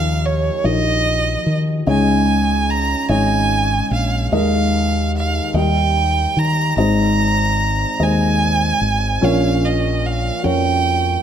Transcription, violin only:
Already playing: F5
0.26 C#5
0.65 D#5
1.88 G#5
2.70 A#5
3.11 G#5
3.94 F5
4.34 F5
5.17 F5
5.57 G5
6.39 A#5
6.78 A#5
8.02 G#5
9.24 F5
9.65 D#5
10.06 F5
10.46 G5

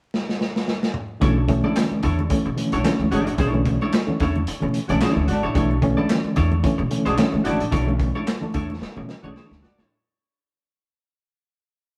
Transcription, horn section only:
2.72 A3 C#4 F#4 C#5
3.11 A3 C#4 F#4 C#5
4.88 A3 C#4 F#4 C#5
5.28 A3 D4 F#4 D5
7.06 A3 D4 F#4 D5
7.45 A3 D4 F#4 D5
9.23 A3 D4 F#4 D5
9.62 A3 D4 F#4 D5

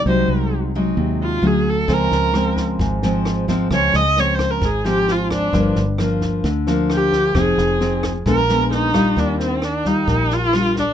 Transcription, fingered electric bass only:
0.06 C2
0.28 C2
0.97 D#2
1.43 D2
1.88 C#2
2.12 C#2
2.80 G#1
3.71 C#2
3.94 C#2
4.62 G#1
5.53 G1
5.76 G1
6.44 D2
7.35 F1
7.58 F1
8.26 A#1
9.17 D#2
10.08 A#1

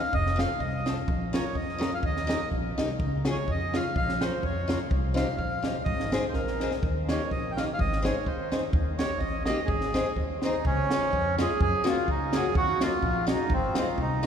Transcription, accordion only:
Already playing: F5
0.14 D#5
0.39 F5
0.59 D#5
1.34 C#5
1.56 D#5
1.94 F5
2.05 D#5
3.30 C#5
3.51 D#5
3.75 F5
3.96 F5
4.21 C5
4.45 C#5
5.16 F5
5.37 F5
5.84 D#5
6.28 C5
6.34 A#4
7.08 C#5
7.31 D#5
7.51 G5
7.57 F5
7.74 F5
7.80 D#5
8.05 C#5
8.27 C5
8.98 C#5
9.18 D#5
9.44 D#5
9.66 G#4
10.45 D#4
10.66 C#4
11.41 G#4
11.62 G#4
11.88 F4
12.10 D#4
12.35 G#4
12.57 F#4
12.82 F4
13.33 D#4
13.53 C4
13.79 F4
14.01 D#4

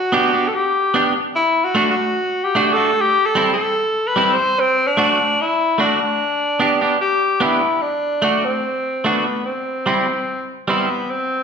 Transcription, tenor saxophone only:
Already playing: F#4
0.48 A4
0.54 G4
1.36 E4
1.64 F#4
1.91 F#4
2.44 G4
2.73 A4
3.01 G4
3.26 A4
3.53 A4
4.07 B4
4.33 C5
4.60 C4
4.87 D4
5.41 E4
5.81 D4
7.01 G4
7.42 E4
7.82 D4
8.45 C4
9.05 B3
9.46 C4
10.68 B3
11.10 C4

